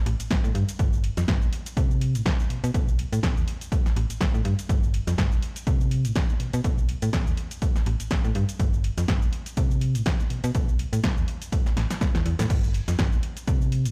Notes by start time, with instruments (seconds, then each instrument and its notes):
0.06 fm bass A1, open hi-hat
0.20 fm bass A1, closed hi-hat, shaker
0.31 fm bass A1, kick, snare, closed hi-hat, shaker
0.44 fm bass A2, shaker
0.55 fm bass G2, open hi-hat
0.69 closed hi-hat, shaker
0.79 fm bass G1, kick, closed hi-hat, shaker
0.93 shaker
1.04 open hi-hat
1.17 fm bass F2, snare, closed hi-hat, shaker
1.28 fm bass G1, kick, snare, closed hi-hat, shaker
1.42 fm bass B1, shaker
1.53 open hi-hat
1.66 closed hi-hat, shaker
1.77 fm bass C3, kick, closed hi-hat, shaker
1.91 shaker
2.01 open hi-hat
2.15 fm bass A2, closed hi-hat, shaker
2.26 kick, snare, closed hi-hat, shaker
2.40 shaker
2.50 fm bass B2, open hi-hat
2.64 fm bass B2, closed hi-hat, shaker
2.74 fm bass B1, kick, closed hi-hat, shaker
2.88 shaker
2.99 open hi-hat
3.13 fm bass A2, closed hi-hat, shaker
3.23 fm bass B1, kick, snare, closed hi-hat, shaker
3.37 fm bass E2, shaker
3.48 open hi-hat
3.61 closed hi-hat, shaker
3.72 kick, closed hi-hat, shaker
3.86 fm bass A1, snare, shaker
3.96 fm bass A1, open hi-hat
4.10 fm bass A1, closed hi-hat, shaker
4.21 fm bass A1, kick, snare, closed hi-hat, shaker
4.34 fm bass A2, shaker
4.45 fm bass G2, open hi-hat
4.59 closed hi-hat, shaker
4.69 fm bass G1, kick, closed hi-hat, shaker
4.83 shaker
4.94 open hi-hat
5.07 fm bass F2, snare, closed hi-hat, shaker
5.18 fm bass G1, kick, snare, closed hi-hat, shaker
5.32 fm bass B1, shaker
5.42 open hi-hat
5.56 closed hi-hat, shaker
5.67 fm bass C3, kick, closed hi-hat, shaker
5.80 shaker
5.91 open hi-hat
6.05 fm bass A2, closed hi-hat, shaker
6.16 kick, snare, closed hi-hat, shaker
6.29 shaker
6.40 fm bass B2, open hi-hat
6.53 fm bass B2, closed hi-hat, shaker
6.64 fm bass B1, kick, closed hi-hat, shaker
6.78 shaker
6.89 open hi-hat
7.02 fm bass A2, closed hi-hat, shaker
7.13 fm bass B1, kick, snare, closed hi-hat, shaker
7.27 fm bass E2, shaker
7.37 open hi-hat
7.51 closed hi-hat, shaker
7.62 kick, closed hi-hat, shaker
7.76 fm bass A1, snare, shaker
7.86 fm bass A1, open hi-hat
8.00 fm bass A1, closed hi-hat, shaker
8.11 fm bass A1, kick, snare, closed hi-hat, shaker
8.24 fm bass A2, shaker
8.35 fm bass G2, open hi-hat
8.49 closed hi-hat, shaker
8.59 fm bass G1, kick, closed hi-hat, shaker
8.73 shaker
8.84 open hi-hat
8.98 fm bass F2, snare, closed hi-hat, shaker
9.08 fm bass G1, kick, snare, closed hi-hat, shaker
9.22 fm bass B1, shaker
9.33 open hi-hat
9.46 closed hi-hat, shaker
9.57 fm bass C3, kick, closed hi-hat, shaker
9.71 shaker
9.81 open hi-hat
9.95 fm bass A2, closed hi-hat, shaker
10.06 kick, snare, closed hi-hat, shaker
10.20 shaker
10.30 fm bass B2, open hi-hat
10.44 fm bass B2, closed hi-hat, shaker
10.55 fm bass B1, kick, closed hi-hat, shaker
10.68 shaker
10.79 open hi-hat
10.93 fm bass A2, closed hi-hat, shaker
11.04 fm bass B1, kick, snare, closed hi-hat, shaker
11.17 fm bass E2, shaker
11.28 open hi-hat
11.42 closed hi-hat, shaker
11.52 kick, closed hi-hat, shaker
11.66 fm bass A1, snare, shaker
11.77 fm bass A1, snare, open hi-hat
11.90 snare, closed hi-hat, shaker
12.01 kick, snare, open hi-hat, shaker
12.15 fm bass E2, snare, shaker
12.26 fm bass E2, open hi-hat
12.39 fm bass A2, snare, closed hi-hat, shaker
12.50 fm bass G1, kick, closed hi-hat, crash, shaker
12.64 shaker
12.74 open hi-hat
12.88 fm bass F2, snare, closed hi-hat, shaker
12.99 fm bass G1, kick, snare, closed hi-hat, shaker
13.12 fm bass B1, shaker
13.23 open hi-hat
13.37 closed hi-hat, shaker
13.48 fm bass C3, kick, closed hi-hat, shaker
13.61 shaker
13.72 open hi-hat
13.85 fm bass A2, closed hi-hat, shaker